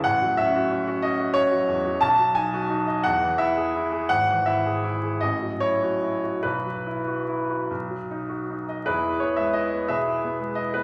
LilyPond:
\new Staff \with { instrumentName = "Grand piano" } { \time 6/8 \key e \major \tempo 4. = 58 << { fis''8 e''4 dis''8 cis''4 | a''8 gis''4 fis''8 e''4 | fis''8 e''4 dis''8 cis''4 | b'4. r4. |
<e' gis' b'>8 cis''16 e''16 dis''8 <gis' b' e''>4 dis''16 b'16 | } \\ { a,,16 fis16 cis'16 fis'16 cis'16 fis'16 cis'16 fis'16 cis'16 fis16 e,16 fis16 | b,,16 fis16 dis'16 fis'16 dis'16 dis''16 e,16 e16 e'16 gis'16 e'16 gis'16 | gis,,16 e16 e'16 gis'16 e'16 gis'16 a,,16 fis16 e'16 fis'16 e'16 fis'16 | b,,16 fis16 e'16 fis'16 e'16 fis'16 b,,16 fis16 dis'16 fis'16 dis'16 dis''16 |
e,16 e'16 b16 gis16 e'16 b16 b,16 e'16 b16 gis16 e'16 b16 | } >> }